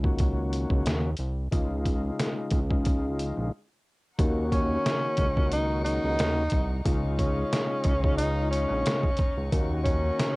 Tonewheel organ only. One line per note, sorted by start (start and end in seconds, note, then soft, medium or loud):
0.03 1.10 D#3 medium
0.03 1.10 A#3 medium
0.03 1.10 C#4 medium
0.03 1.10 F#4 loud
1.51 2.60 C#3 medium
1.51 2.60 G#3 medium
1.51 2.60 D#4 medium
1.51 2.60 F4 loud
2.70 3.52 C#3 medium
2.70 3.52 G#3 medium
2.70 3.52 D#4 medium
2.70 3.52 F4 loud
4.18 5.27 D#3 loud
4.18 5.27 A#3 medium
4.18 5.27 C#4 medium
4.18 5.27 F#4 loud
5.36 6.43 D#3 medium
5.36 6.44 A#3 medium
5.36 6.44 C#4 medium
5.36 6.44 F#4 loud
6.85 7.93 C#3 medium
6.85 7.93 G#3 medium
6.85 7.93 D#4 medium
6.85 7.94 F4 loud
8.03 9.10 C#3 loud
8.03 9.10 G#3 medium
8.03 9.10 D#4 medium
8.03 9.11 F4 loud
9.52 10.36 D#3 loud
9.52 10.36 A#3 medium
9.52 10.36 C#4 loud
9.52 10.36 F#4 loud